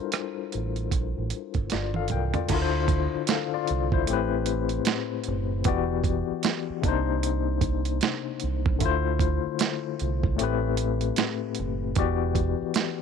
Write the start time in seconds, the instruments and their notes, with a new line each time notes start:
Already playing: tine electric piano G3 D4 E4 F4 A4 A#4 C5
0.12 cross-stick, closed hi-hat
0.52 fingered electric bass A1, closed hi-hat
0.76 closed hi-hat
0.91 fingered electric bass A#1, kick, closed hi-hat
1.18 fingered electric bass A1
1.30 closed hi-hat
1.54 fingered electric bass G1, kick, closed hi-hat
1.70 fingered electric bass G1, tine electric piano F4 D5, snare, closed hi-hat
1.94 tine electric piano A4 F5, high tom
2.08 tine electric piano G5, closed hi-hat, mid tom
2.12 fingered electric bass C2, tine electric piano A#4
2.34 tine electric piano F4 D5, closed hi-hat, floor tom
2.48 fingered electric bass D2, tine electric piano D3 D4 E4, kick, closed hi-hat, crash
2.54 tine electric piano F4 A#4
2.62 tine electric piano C5
2.88 kick, closed hi-hat
3.15 muted fingered electric bass stroke
3.27 tine electric piano A4 F5, snare, closed hi-hat
3.54 tine electric piano F4 D5
3.67 fingered electric bass C2, closed hi-hat
3.92 tine electric piano E4 C5, kick
4.06 fingered electric bass A1, tine electric piano A2 A3 C4, closed hi-hat
4.11 tine electric piano G4 B4
4.46 closed hi-hat
4.69 closed hi-hat
4.85 snare, closed hi-hat
5.24 closed hi-hat
5.28 fingered electric bass F#1
5.64 fingered electric bass E1, tine electric piano E3 B3 F#4 G4, kick, closed hi-hat
5.68 tine electric piano D5
6.04 kick, closed hi-hat
6.31 muted fingered electric bass stroke
6.43 snare, closed hi-hat
6.70 muted fingered electric bass stroke
6.81 fingered electric bass C2, tine electric piano C3 A#3 D4, kick, closed hi-hat
6.87 tine electric piano D#4 C5
7.23 closed hi-hat
7.61 kick, closed hi-hat
7.85 closed hi-hat
8.01 snare, closed hi-hat
8.40 fingered electric bass C2, closed hi-hat
8.66 kick
8.79 fingered electric bass D2, tine electric piano D3 A3 E4, kick, closed hi-hat
8.84 tine electric piano F4 C5
9.19 kick, closed hi-hat
9.46 muted fingered electric bass stroke
9.59 snare, closed hi-hat
10.00 fingered electric bass C2, closed hi-hat
10.23 kick
10.36 tine electric piano A2 A3 C4, closed hi-hat
10.41 fingered electric bass A1, tine electric piano G4 B4
10.77 closed hi-hat
11.01 closed hi-hat
11.16 snare, closed hi-hat
11.55 closed hi-hat
11.59 fingered electric bass F#1
11.96 fingered electric bass E1, tine electric piano E3 B3 F#4 G4 D5, kick, closed hi-hat
12.35 kick, closed hi-hat
12.62 muted fingered electric bass stroke
12.74 snare, closed hi-hat